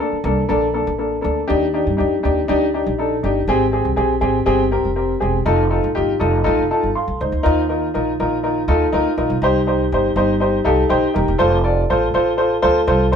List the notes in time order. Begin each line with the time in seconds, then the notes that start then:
0.00 A#3 D4 A4
0.12 muted upright bass stroke
0.24 C2 A#3 D4 A4
0.49 A#1 A#3 D4 A4
0.74 A#3 D4 A4
0.87 A1
0.98 A#3 D4 A4
1.21 D2 A#3 D4 A4
1.48 D#2 D4 D#4 G4
1.74 D4 D#4 G4
1.87 G2
1.97 F2 D4 D#4 G4
2.23 D#2 D4 D#4 G4
2.48 D2 D4 D#4 G4
2.74 D4 D#4 G4
2.86 A#1
2.98 D4 D#4 A4
3.23 G1 D4 D#4 G4
3.47 G#1 C4 G4 G#4
3.72 C4 G4 G#4
3.85 C2
3.96 A#1 C4 G4 G#4
4.21 G#1 C4 G4 G#4
4.46 G1 C4 G4 G#4
4.71 C4 G4 A#4
4.85 F1
4.96 C4 G4 A#4
5.20 E1 C4 G4 G#4
5.46 F1 D#4 F4 A4
5.70 D#4 F4 A4
5.84 A1
5.95 G1 D#4 F4 G4
6.20 F1 D#4 F4 A4 D#5
6.44 A1 D#4 F4 A4 F5
6.58 F1
6.71 D#4 F4 A4 A5
6.83 G1
6.95 A4 F5 C6
7.08 A1
7.21 C#2 D#4 C5
7.32 D2
7.43 D#2 D#4 F4 A#4
7.69 D#4 F4 A#4
7.94 A#1 D#4 F4 A#4
8.20 A#1 D#4 F4 A#4
8.43 D#4 F4 A#4
8.68 D#2 D#4 F4 A4
8.92 D2 D#4 F4 A#4
9.17 A#1 D#4 F4 A#4
9.30 B1
9.42 C2 D#4 G4 C5
9.67 D#4 G4 C5
9.92 G1 D#4 G4 C5
10.16 G1 D#4 G4 C5
10.40 D#4 G4 C5
10.64 C2 D#4 G4 A4 F5
10.89 A#1 D#4 G4 C5 G5
11.14 D#1 D#4 G4 A#4
11.28 E1
11.38 F1 F4 A4 C5
11.64 F4 A4 D5
11.90 A1 F4 A4 C5
12.14 A1 F4 A4 C5
12.37 F4 A4 C5
12.62 D2 F4 A4 C5
12.87 C2 F4 A4 C5
13.12 F4 A4 C5